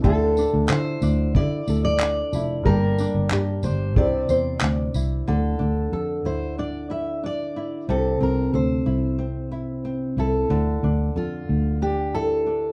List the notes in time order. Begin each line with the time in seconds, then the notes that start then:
Already playing: C4 E4 A4
0.02 D2 D3 D4 F4 A4, kick
0.06 E5
0.37 D4, tambourine
0.54 D2
0.69 D3 E4 C5, clap
1.02 D2 D4, tambourine
1.35 D3 E4 D5, kick
1.68 D2 A4, tambourine
1.85 D5
2.00 D4, clap
2.32 F1 D4 E4 F4 A4 E5, tambourine
2.64 G1 G3 A#3 G4 A#4 A5, kick
2.68 D5
2.99 D4, tambourine
3.15 G1
3.30 G2 G4, clap
3.63 G1 D4 C5, tambourine
3.94 C2 C3 C4 E4 G4 D5, kick
3.98 D5
4.29 E2 C5, tambourine
4.61 D2 D4, clap
4.94 C2 E4, tambourine
5.28 D2 D3 A4
5.59 D2 D4
5.92 F2 A4
6.25 D2 E4 C5
6.58 D4 D5
6.90 E4 E5
7.23 D4 D5
7.56 E4
7.89 C2 C3 A4
8.21 C2 C4 A#4
8.54 D2 A4 C5
8.86 C2 E4
9.19 C4
9.52 E4
9.85 C4
10.17 C2 E4 A4
10.50 D2 D3
10.83 D2 D4
11.16 F2 F4 A4
11.49 D2
11.82 D4 G4
12.14 E4 A4
12.46 D4